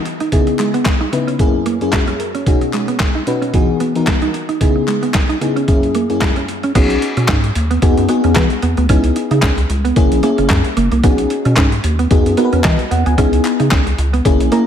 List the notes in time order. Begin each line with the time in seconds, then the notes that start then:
0.05 muted clean electric guitar stroke, closed hi-hat
0.20 D#4, closed hi-hat
0.32 C#3 B3 D#4 E4 G#4, kick, closed hi-hat
0.47 muted clean electric guitar stroke, closed hi-hat
0.59 G#3, clap, closed hi-hat
0.74 B3, closed hi-hat
0.85 kick, snare, clap, closed hi-hat
1.01 D#4
1.12 C#3 B3 D#4 E4 B4, muted clean electric guitar stroke, closed hi-hat
1.27 C#4, closed hi-hat
1.39 F#2 A#3 C#4 E4 G#4, kick, closed hi-hat
1.66 A#3, closed hi-hat
1.81 F#2 A#3 C#4 E4 G#4, closed hi-hat
1.93 F#4, kick, snare, clap, closed hi-hat
2.07 C#4 G#4, closed hi-hat
2.20 A#4, muted clean electric guitar stroke, closed hi-hat
2.35 C#4 C#5, closed hi-hat
2.46 B2 C#4 D#4 F#4 G#4, kick, closed hi-hat
2.61 muted clean electric guitar stroke, closed hi-hat
2.73 G#3, clap, closed hi-hat
2.88 B3, closed hi-hat
2.99 kick, snare, clap, closed hi-hat
3.15 D#4
3.27 B2 C#4 D#4 F#4 B4, muted clean electric guitar stroke, closed hi-hat
3.42 C#4, closed hi-hat
3.54 E3 B3 D#4 F#4 G#4, kick, closed hi-hat
3.80 B3, closed hi-hat
3.95 E3 B3 D#4 F#4 A#4, closed hi-hat
4.07 kick, snare, clap, closed hi-hat
4.22 D#4, closed hi-hat
4.34 muted clean electric guitar stroke, closed hi-hat
4.49 D#4, closed hi-hat
4.61 C#3 B3 D#4 E4 G#4, kick, closed hi-hat
4.76 muted clean electric guitar stroke
4.87 G#3, clap, closed hi-hat
5.03 B3, closed hi-hat
5.14 kick, snare, clap, closed hi-hat
5.29 D#4, closed hi-hat
5.41 C#3 B3 D#4 E4 G#4, muted clean electric guitar stroke, closed hi-hat
5.56 C#4, closed hi-hat
5.68 F#2 A#3 C#4 E4 G#4, kick, closed hi-hat
5.83 closed hi-hat
5.95 A#3, closed hi-hat
6.09 F#2 A#3 C#4 E4 G#4, closed hi-hat
6.21 kick, snare, clap, closed hi-hat
6.36 C#4, closed hi-hat
6.48 muted clean electric guitar stroke, closed hi-hat
6.63 C#4, closed hi-hat
6.75 B1 B3 C#4 D#4 F#4 G#4, kick, closed hi-hat, crash
6.90 closed hi-hat
7.02 muted clean electric guitar stroke, closed hi-hat
7.17 B2 C#4, closed hi-hat
7.28 G#2 C#4, kick, snare, clap, closed hi-hat
7.44 muted clean electric guitar stroke, closed hi-hat
7.55 D#2, closed hi-hat
7.71 B3, closed hi-hat
7.82 E2 B3 D#4 F#4 G#4, muted clean electric guitar stroke, kick, closed hi-hat
7.97 F#2, closed hi-hat
8.09 B3 D#4 F#4 G#4, closed hi-hat
8.24 E2 C#4, closed hi-hat
8.35 E3, muted clean electric guitar stroke, kick, snare, clap, closed hi-hat
8.50 closed hi-hat
8.62 E2 B3, closed hi-hat
8.77 D2 B3, closed hi-hat
8.89 C#2 B3 C#4 D#4 E4 G#4, kick, closed hi-hat
9.04 closed hi-hat
9.16 muted clean electric guitar stroke, closed hi-hat
9.31 C#3 D#4, closed hi-hat
9.42 C#2 C#4, kick, snare, clap, closed hi-hat
9.58 muted clean electric guitar stroke, closed hi-hat
9.70 C#2, closed hi-hat
9.85 B3, closed hi-hat
9.96 F#1 A#3 C#4 E4 G#4, muted clean electric guitar stroke, kick, closed hi-hat
10.11 A#1, closed hi-hat
10.23 A#3 C#4 E4 G#4, closed hi-hat
10.38 F#1 C#4, closed hi-hat
10.49 F#2, muted clean electric guitar stroke, kick, snare, clap, closed hi-hat
10.64 closed hi-hat
10.77 F#1 A#3, closed hi-hat
10.92 C2 A#3, closed hi-hat
11.03 B1 B3 C#4 D#4 F#4 G#4, kick, closed hi-hat
11.18 closed hi-hat
11.30 muted clean electric guitar stroke, closed hi-hat
11.45 B2 C#4, closed hi-hat
11.56 G#2 C#4, kick, snare, clap, closed hi-hat
11.72 muted clean electric guitar stroke, closed hi-hat
11.84 D#2, closed hi-hat
11.99 B3, closed hi-hat
12.11 E2 B3 D#4 F#4 G#4, muted clean electric guitar stroke, kick, closed hi-hat
12.26 F#2, closed hi-hat
12.37 B3 D#4 F#4 A#4, closed hi-hat
12.45 B4
12.53 E2 C#4, closed hi-hat
12.64 E3 D#5, kick, snare, clap, closed hi-hat
12.79 closed hi-hat
12.91 E2 B3 F#5, closed hi-hat
13.06 D2 B3 G#5, closed hi-hat
13.18 C#2 B3 C#4 D#4 E4 G#4, kick, closed hi-hat
13.33 closed hi-hat
13.45 muted clean electric guitar stroke, clap, closed hi-hat
13.60 C#3 D#4, closed hi-hat
13.71 C#2 C#4, kick, snare, clap, closed hi-hat
13.86 muted clean electric guitar stroke, closed hi-hat
13.98 C#2, closed hi-hat
14.13 B3, closed hi-hat
14.25 F#1 A#3 C#4 E4 G#4, muted clean electric guitar stroke, kick, closed hi-hat
14.40 A#1, closed hi-hat
14.52 A#3 C#4 E4 G#4 A#5, closed hi-hat